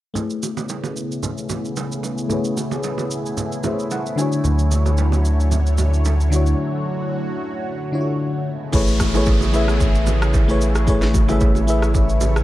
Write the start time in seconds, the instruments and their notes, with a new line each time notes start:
0.14 analog synth pad C#3 A3 B3 E4 G#4, fm electric piano A3 E4 G#4, low conga, shaker
0.18 fm electric piano B4 C#5
0.30 shaker
0.43 low bongo, shaker
0.57 low bongo, shaker
0.69 high bongo, shaker
0.84 low bongo, shaker
0.97 shaker
1.12 shaker
1.23 low conga, shaker
1.38 shaker
1.49 low bongo, low conga, shaker
1.65 shaker
1.76 high bongo, shaker
1.92 shaker
2.03 high bongo, shaker
2.18 shaker
2.28 fm electric piano A3 E4 G#4, low conga, shaker
2.32 fm electric piano B4 C#5
2.44 shaker
2.57 low bongo, shaker
2.71 low bongo, shaker
2.83 high bongo, shaker
2.98 low bongo, shaker
3.11 shaker
3.26 shaker
3.37 low conga, shaker
3.52 shaker
3.63 fm electric piano A3 E4 G#4 B4 C5 E5, low bongo, low conga, shaker
3.73 fm electric piano C#5
3.79 shaker
3.91 fm electric piano F#5, high bongo, shaker
4.06 shaker
4.16 fm electric piano D3 D4 E4 G#5, analog synth pad D3 F#3 C#5, high bongo, shaker
4.20 fm electric piano F#4 C#5
4.32 shaker
4.44 sub bass D2, low conga, shaker
4.59 shaker
4.71 low bongo, shaker
4.86 low bongo, shaker
4.97 high bongo, shaker
5.12 low bongo, shaker
5.25 shaker
5.40 shaker
5.51 low conga, shaker
5.66 shaker
5.78 low bongo, low conga, shaker
5.94 shaker
6.05 high bongo, shaker
6.20 shaker
6.30 fm electric piano D3 D4 E4, analog synth pad F#4, high bongo, shaker
6.34 fm electric piano F#4 C#5
6.46 shaker
7.92 fm electric piano D3 D4 E4 F4 C#5
8.01 fm electric piano F#4
8.46 analog synth pad C#3 G#3 B3 E4
8.72 sub bass A1, analog synth pad C#3 A3 B3 E4 G#4, fm electric piano A3 E4 G#4 B4 C#5, kick, crash, downlifter, low conga, shaker
8.87 shaker
9.00 kick, cross-stick, low bongo, shaker
9.14 fm electric piano A3 E4 G#4 B4 C#5, high bongo, low bongo, shaker
9.26 kick, high bongo, shaker
9.41 low bongo, shaker
9.53 fm electric piano A3 E4 G#4 B4 E5, shaker
9.68 cross-stick, shaker
9.80 kick, low conga, shaker
9.95 shaker
10.06 low bongo, low conga, shaker
10.22 cross-stick, shaker
10.34 kick, high bongo, shaker
10.48 fm electric piano A3 E4 G#4 B4 C#5, shaker
10.61 shaker
10.75 cross-stick, shaker
10.87 fm electric piano A3 E4 G#4 B4 C#5, analog synth pad C#5, kick, low conga, shaker
11.02 snare, shaker
11.14 kick, low bongo, shaker
11.28 fm electric piano A3 E4 G#4 B4 E5, high bongo, low bongo, shaker
11.40 kick, high bongo, shaker
11.55 low bongo, shaker
11.67 fm electric piano A3 E4 G#4 B4 E5, shaker
11.82 cross-stick, shaker
11.94 kick, low conga, shaker
12.09 shaker
12.21 low bongo, low conga, shaker
12.36 cross-stick, shaker